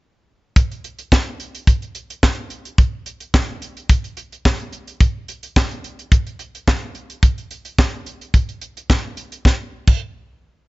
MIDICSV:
0, 0, Header, 1, 2, 480
1, 0, Start_track
1, 0, Tempo, 555556
1, 486, Time_signature, 4, 2, 24, 8
1, 9228, End_track
2, 0, Start_track
2, 0, Title_t, "Drums"
2, 486, Note_on_c, 9, 36, 120
2, 486, Note_on_c, 9, 42, 84
2, 572, Note_off_c, 9, 36, 0
2, 572, Note_off_c, 9, 42, 0
2, 618, Note_on_c, 9, 42, 38
2, 704, Note_off_c, 9, 42, 0
2, 729, Note_on_c, 9, 42, 69
2, 815, Note_off_c, 9, 42, 0
2, 852, Note_on_c, 9, 42, 56
2, 938, Note_off_c, 9, 42, 0
2, 967, Note_on_c, 9, 36, 117
2, 973, Note_on_c, 9, 38, 114
2, 983, Note_on_c, 9, 39, 90
2, 1054, Note_off_c, 9, 36, 0
2, 1059, Note_off_c, 9, 38, 0
2, 1070, Note_off_c, 9, 39, 0
2, 1208, Note_on_c, 9, 42, 69
2, 1294, Note_off_c, 9, 42, 0
2, 1336, Note_on_c, 9, 42, 57
2, 1423, Note_off_c, 9, 42, 0
2, 1446, Note_on_c, 9, 36, 102
2, 1449, Note_on_c, 9, 42, 87
2, 1532, Note_off_c, 9, 36, 0
2, 1535, Note_off_c, 9, 42, 0
2, 1574, Note_on_c, 9, 42, 35
2, 1660, Note_off_c, 9, 42, 0
2, 1683, Note_on_c, 9, 42, 67
2, 1770, Note_off_c, 9, 42, 0
2, 1816, Note_on_c, 9, 42, 55
2, 1903, Note_off_c, 9, 42, 0
2, 1927, Note_on_c, 9, 36, 101
2, 1928, Note_on_c, 9, 38, 110
2, 1938, Note_on_c, 9, 39, 92
2, 2013, Note_off_c, 9, 36, 0
2, 2014, Note_off_c, 9, 38, 0
2, 2024, Note_off_c, 9, 39, 0
2, 2162, Note_on_c, 9, 42, 64
2, 2248, Note_off_c, 9, 42, 0
2, 2293, Note_on_c, 9, 42, 53
2, 2379, Note_off_c, 9, 42, 0
2, 2404, Note_on_c, 9, 42, 80
2, 2405, Note_on_c, 9, 36, 114
2, 2490, Note_off_c, 9, 42, 0
2, 2491, Note_off_c, 9, 36, 0
2, 2644, Note_on_c, 9, 42, 66
2, 2731, Note_off_c, 9, 42, 0
2, 2769, Note_on_c, 9, 42, 54
2, 2855, Note_off_c, 9, 42, 0
2, 2886, Note_on_c, 9, 36, 127
2, 2889, Note_on_c, 9, 38, 110
2, 2899, Note_on_c, 9, 39, 95
2, 2972, Note_off_c, 9, 36, 0
2, 2976, Note_off_c, 9, 38, 0
2, 2986, Note_off_c, 9, 39, 0
2, 3127, Note_on_c, 9, 42, 68
2, 3213, Note_off_c, 9, 42, 0
2, 3255, Note_on_c, 9, 42, 49
2, 3342, Note_off_c, 9, 42, 0
2, 3365, Note_on_c, 9, 36, 103
2, 3368, Note_on_c, 9, 42, 92
2, 3452, Note_off_c, 9, 36, 0
2, 3454, Note_off_c, 9, 42, 0
2, 3492, Note_on_c, 9, 42, 37
2, 3578, Note_off_c, 9, 42, 0
2, 3602, Note_on_c, 9, 42, 73
2, 3688, Note_off_c, 9, 42, 0
2, 3736, Note_on_c, 9, 42, 52
2, 3823, Note_off_c, 9, 42, 0
2, 3847, Note_on_c, 9, 36, 104
2, 3850, Note_on_c, 9, 38, 116
2, 3861, Note_on_c, 9, 39, 89
2, 3934, Note_off_c, 9, 36, 0
2, 3937, Note_off_c, 9, 38, 0
2, 3947, Note_off_c, 9, 39, 0
2, 3973, Note_on_c, 9, 42, 33
2, 4059, Note_off_c, 9, 42, 0
2, 4083, Note_on_c, 9, 42, 61
2, 4169, Note_off_c, 9, 42, 0
2, 4212, Note_on_c, 9, 42, 52
2, 4298, Note_off_c, 9, 42, 0
2, 4324, Note_on_c, 9, 42, 87
2, 4325, Note_on_c, 9, 36, 108
2, 4411, Note_off_c, 9, 36, 0
2, 4411, Note_off_c, 9, 42, 0
2, 4566, Note_on_c, 9, 42, 69
2, 4652, Note_off_c, 9, 42, 0
2, 4691, Note_on_c, 9, 42, 59
2, 4777, Note_off_c, 9, 42, 0
2, 4806, Note_on_c, 9, 36, 127
2, 4810, Note_on_c, 9, 38, 113
2, 4820, Note_on_c, 9, 39, 91
2, 4893, Note_off_c, 9, 36, 0
2, 4896, Note_off_c, 9, 38, 0
2, 4907, Note_off_c, 9, 39, 0
2, 4934, Note_on_c, 9, 42, 35
2, 5020, Note_off_c, 9, 42, 0
2, 5048, Note_on_c, 9, 42, 66
2, 5134, Note_off_c, 9, 42, 0
2, 5176, Note_on_c, 9, 42, 53
2, 5263, Note_off_c, 9, 42, 0
2, 5285, Note_on_c, 9, 36, 110
2, 5288, Note_on_c, 9, 42, 96
2, 5372, Note_off_c, 9, 36, 0
2, 5375, Note_off_c, 9, 42, 0
2, 5414, Note_on_c, 9, 42, 39
2, 5500, Note_off_c, 9, 42, 0
2, 5523, Note_on_c, 9, 42, 72
2, 5610, Note_off_c, 9, 42, 0
2, 5658, Note_on_c, 9, 42, 57
2, 5744, Note_off_c, 9, 42, 0
2, 5768, Note_on_c, 9, 36, 106
2, 5771, Note_on_c, 9, 38, 116
2, 5781, Note_on_c, 9, 39, 94
2, 5854, Note_off_c, 9, 36, 0
2, 5857, Note_off_c, 9, 38, 0
2, 5867, Note_off_c, 9, 39, 0
2, 6003, Note_on_c, 9, 42, 62
2, 6090, Note_off_c, 9, 42, 0
2, 6133, Note_on_c, 9, 42, 55
2, 6219, Note_off_c, 9, 42, 0
2, 6245, Note_on_c, 9, 36, 109
2, 6245, Note_on_c, 9, 42, 88
2, 6331, Note_off_c, 9, 36, 0
2, 6331, Note_off_c, 9, 42, 0
2, 6376, Note_on_c, 9, 42, 36
2, 6462, Note_off_c, 9, 42, 0
2, 6486, Note_on_c, 9, 42, 68
2, 6573, Note_off_c, 9, 42, 0
2, 6609, Note_on_c, 9, 42, 57
2, 6695, Note_off_c, 9, 42, 0
2, 6726, Note_on_c, 9, 36, 121
2, 6731, Note_on_c, 9, 38, 109
2, 6741, Note_on_c, 9, 39, 92
2, 6813, Note_off_c, 9, 36, 0
2, 6818, Note_off_c, 9, 38, 0
2, 6828, Note_off_c, 9, 39, 0
2, 6967, Note_on_c, 9, 42, 70
2, 7053, Note_off_c, 9, 42, 0
2, 7096, Note_on_c, 9, 42, 51
2, 7183, Note_off_c, 9, 42, 0
2, 7205, Note_on_c, 9, 36, 104
2, 7208, Note_on_c, 9, 42, 90
2, 7292, Note_off_c, 9, 36, 0
2, 7295, Note_off_c, 9, 42, 0
2, 7334, Note_on_c, 9, 42, 35
2, 7420, Note_off_c, 9, 42, 0
2, 7443, Note_on_c, 9, 42, 66
2, 7529, Note_off_c, 9, 42, 0
2, 7577, Note_on_c, 9, 42, 58
2, 7663, Note_off_c, 9, 42, 0
2, 7687, Note_on_c, 9, 36, 112
2, 7690, Note_on_c, 9, 38, 100
2, 7701, Note_on_c, 9, 39, 92
2, 7774, Note_off_c, 9, 36, 0
2, 7777, Note_off_c, 9, 38, 0
2, 7787, Note_off_c, 9, 39, 0
2, 7923, Note_on_c, 9, 42, 67
2, 8010, Note_off_c, 9, 42, 0
2, 8053, Note_on_c, 9, 42, 59
2, 8139, Note_off_c, 9, 42, 0
2, 8165, Note_on_c, 9, 36, 96
2, 8172, Note_on_c, 9, 38, 78
2, 8252, Note_off_c, 9, 36, 0
2, 8259, Note_off_c, 9, 38, 0
2, 8532, Note_on_c, 9, 36, 99
2, 8532, Note_on_c, 9, 49, 78
2, 8618, Note_off_c, 9, 49, 0
2, 8619, Note_off_c, 9, 36, 0
2, 9228, End_track
0, 0, End_of_file